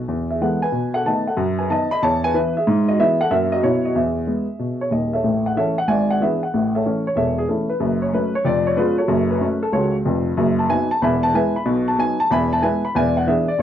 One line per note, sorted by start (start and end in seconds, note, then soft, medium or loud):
0.09 0.36 E2 medium
0.31 0.42 G#4 soft
0.31 0.42 E5 medium
0.41 0.59 E3 soft
0.41 0.59 G#3 soft
0.41 0.60 B3 soft
0.41 0.62 A4 soft
0.41 0.63 F#5 medium
0.62 0.93 B4 medium
0.62 0.95 G#5 medium
0.72 1.00 B2 medium
0.94 1.06 A4 medium
0.94 1.05 F#5 medium
1.05 1.23 D#3 soft
1.05 1.23 A3 soft
1.05 1.23 B3 soft
1.05 1.26 D#5 medium
1.05 1.27 A5 medium
1.27 1.38 A4 soft
1.27 1.38 F#5 medium
1.37 1.65 F#2 medium
1.59 1.70 B4 soft
1.59 1.70 G#5 medium
1.70 1.88 D#3 soft
1.70 1.88 B3 soft
1.70 1.91 D#5 medium
1.70 1.91 A5 medium
1.91 2.02 D#5 medium
1.91 2.02 B5 loud
2.03 2.30 E2 medium
2.03 2.23 C#5 medium
2.03 2.24 A5 loud
2.24 2.34 B4 medium
2.24 2.35 G#5 loud
2.34 2.52 E3 soft
2.34 2.52 B3 soft
2.34 2.55 E4 medium
2.34 2.56 B4 medium
2.57 2.87 G#4 medium
2.57 2.89 E5 medium
2.67 2.95 G#2 loud
2.89 2.99 F#4 medium
2.89 2.99 D#5 medium
2.99 3.17 E3 medium
2.99 3.17 B3 medium
2.99 3.18 E4 medium
2.99 3.20 G#4 medium
2.99 3.21 E5 loud
3.21 3.31 A4 medium
3.21 3.32 F#5 loud
3.30 3.58 F#2 medium
3.30 3.48 F#3 soft
3.30 3.49 A#3 soft
3.30 3.49 C#4 soft
3.30 3.52 A#4 medium
3.30 3.52 E5 medium
3.52 3.63 F#4 medium
3.52 3.63 D#5 medium
3.63 3.90 B2 medium
3.63 3.80 F#3 soft
3.63 3.81 B3 soft
3.63 3.84 E4 medium
3.63 3.85 C#5 medium
3.85 3.96 F#4 soft
3.85 3.96 D#5 medium
3.95 4.23 E2 medium
3.95 5.10 G#4 soft
3.95 5.12 E5 medium
4.27 4.45 G#3 soft
4.27 4.45 B3 soft
4.59 4.87 B2 medium
4.81 4.92 C#5 medium
4.91 5.17 D#1 soft
4.91 5.17 D#2 medium
4.91 5.13 D#5 medium
5.13 5.44 A4 soft
5.13 5.44 C#5 soft
5.13 5.45 E5 medium
5.24 5.51 A1 medium
5.24 5.51 A2 medium
5.46 5.57 F#5 medium
5.56 5.74 E3 soft
5.56 5.74 A3 soft
5.56 5.75 C#4 soft
5.56 5.77 A4 medium
5.56 5.77 C#5 medium
5.56 5.78 E5 medium
5.78 5.89 F#5 medium
5.88 6.15 G#1 medium
5.88 6.15 G#2 medium
5.88 6.09 D5 medium
5.88 6.09 E5 medium
5.88 6.09 G#5 medium
6.10 6.21 F#5 medium
6.21 6.38 E3 soft
6.21 6.39 B3 soft
6.21 6.39 D4 soft
6.21 6.41 G#4 medium
6.21 6.42 B4 medium
6.21 6.42 E5 medium
6.43 6.74 F#5 medium
6.54 6.81 A1 medium
6.54 6.81 A2 medium
6.75 7.05 A4 soft
6.75 7.05 C#5 soft
6.75 7.07 E5 medium
6.85 7.03 E3 soft
6.85 7.03 A3 soft
6.85 7.03 C#4 soft
7.07 7.16 C#5 medium
7.16 7.44 E1 medium
7.16 7.43 E2 medium
7.16 7.37 A4 medium
7.16 7.37 C#5 medium
7.16 7.38 E5 medium
7.38 7.49 G#4 medium
7.48 7.66 E3 soft
7.48 7.66 A3 soft
7.48 7.69 C#4 soft
7.48 7.69 E4 soft
7.48 7.70 A4 medium
7.70 8.02 B4 medium
7.80 8.08 F#1 medium
7.80 8.08 F#2 medium
8.02 8.13 C#5 medium
8.13 8.31 F#3 soft
8.13 8.31 A3 soft
8.13 8.32 C#4 soft
8.13 8.35 B4 medium
8.35 8.46 C#5 medium
8.44 8.72 F1 medium
8.44 8.72 F2 medium
8.44 8.67 D5 medium
8.67 8.78 C#5 medium
8.76 8.94 G#3 soft
8.76 8.95 B3 soft
8.76 8.95 C#4 soft
8.76 8.98 F4 medium
8.76 8.98 G#4 medium
8.76 8.98 B4 medium
8.98 9.29 F#4 soft
8.98 9.29 A4 medium
8.98 9.31 C#5 medium
9.08 9.36 F#1 medium
9.08 9.36 F#2 medium
9.31 9.63 B4 medium
9.40 9.58 F#3 medium
9.40 9.59 A3 medium
9.40 9.59 C#4 medium
9.63 9.73 A4 medium
9.72 10.00 C#2 medium
9.72 10.00 C#3 medium
9.72 9.94 F#4 medium
9.72 9.94 A4 medium
9.72 9.95 C#5 medium
10.05 10.31 F1 medium
10.05 10.31 F2 medium
10.37 10.65 F#1 medium
10.37 10.65 F#2 medium
10.59 10.70 A5 medium
10.70 10.87 F#3 medium
10.70 10.88 B3 medium
10.70 10.88 D#4 medium
10.70 10.91 G#5 medium
10.91 11.02 A5 medium
11.02 11.30 E1 medium
11.02 11.30 E2 medium
11.02 11.23 E5 medium
11.02 11.23 G#5 medium
11.02 11.24 B5 medium
11.23 11.35 A5 loud
11.34 11.52 G#3 soft
11.34 11.52 B3 soft
11.34 11.52 E4 medium
11.34 11.55 B4 medium
11.34 11.55 E5 medium
11.34 11.56 G#5 medium
11.56 11.67 B5 medium
11.66 11.94 B1 medium
11.66 11.94 B2 medium
11.88 11.99 A5 medium
11.99 12.16 F#3 soft
11.99 12.17 B3 medium
11.99 12.17 D#4 soft
11.99 12.21 G#5 loud
12.20 12.31 A5 loud
12.31 12.58 E1 medium
12.31 12.58 E2 medium
12.31 12.52 E5 medium
12.31 12.52 G#5 medium
12.31 12.53 B5 loud
12.53 12.64 A5 medium
12.62 12.80 G#3 soft
12.62 12.80 B3 soft
12.62 12.81 E4 soft
12.62 12.83 B4 medium
12.62 12.83 E5 medium
12.62 12.84 G#5 medium
12.85 12.96 B5 medium
12.95 13.23 E1 medium
12.95 13.23 E2 medium
12.95 13.16 D5 medium
12.95 13.16 E5 medium
12.95 13.17 G#5 loud
13.17 13.28 F#5 medium
13.27 13.45 E3 medium
13.27 13.46 B3 soft
13.27 13.46 D4 medium
13.27 13.48 G#4 medium
13.27 13.48 B4 medium
13.27 13.49 E5 medium
13.48 13.60 D5 medium
13.59 13.62 A1 medium
13.59 13.62 A2 medium